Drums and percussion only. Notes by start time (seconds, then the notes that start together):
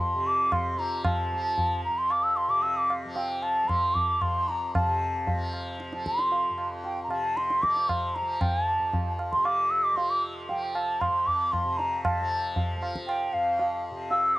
0.52 tabla na, tabla ge
0.79 tabla te
1.05 tabla na, tabla ge
1.58 tabla tin, tabla ge
2.10 tabla na
2.37 tabla na
2.63 tabla tin
2.90 tabla na
3.16 tabla tin
3.43 tabla na
3.69 tabla na, tabla ge
3.95 tabla ge
4.22 tabla na, tabla ge
4.48 tabla te
4.75 tabla na, tabla ge
5.27 tabla tin, tabla ge
5.53 tabla na
5.80 tabla te
5.93 tabla te
6.06 tabla ke
6.19 tabla te
6.32 tabla tin
6.58 tabla na
6.84 tabla tin
7.11 tabla na
7.37 tabla te
7.50 tabla te
7.63 tabla ke
7.76 tabla te
7.89 tabla na, tabla ge
8.16 tabla te
8.41 tabla na, tabla ge
8.93 tabla tin, tabla ge
9.19 tabla na
9.33 tabla ke
9.45 tabla na
9.97 tabla tin
10.49 tabla tin
10.75 tabla na
11.01 tabla na, tabla ge
11.27 tabla ge
11.53 tabla na, tabla ge
11.79 tabla te
12.05 tabla na, tabla ge
12.56 tabla tin, tabla ge
12.82 tabla na
12.96 tabla ke
13.09 tabla na
13.59 tabla tin
14.11 tabla tin